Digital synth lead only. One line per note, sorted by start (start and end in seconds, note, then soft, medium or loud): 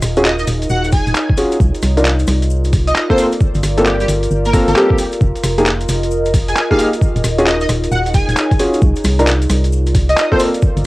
0.25 0.34 D#5 medium
0.39 0.44 D#5 medium
0.70 0.90 F#5 loud
0.92 1.37 G#5 medium
2.87 3.07 D#5 medium
3.10 3.24 C5 medium
3.86 3.95 G4 medium
4.01 4.06 G4 medium
4.46 4.61 A#4 medium
4.68 4.74 A#4 medium
4.76 5.04 G4 medium
6.48 6.68 G#5 medium
6.71 6.86 F5 medium
7.47 7.56 D#5 medium
7.61 7.66 D#5 medium
7.92 8.12 F#5 medium
8.14 8.59 G#5 loud
10.09 10.29 D#5 medium
10.32 10.46 C5 loud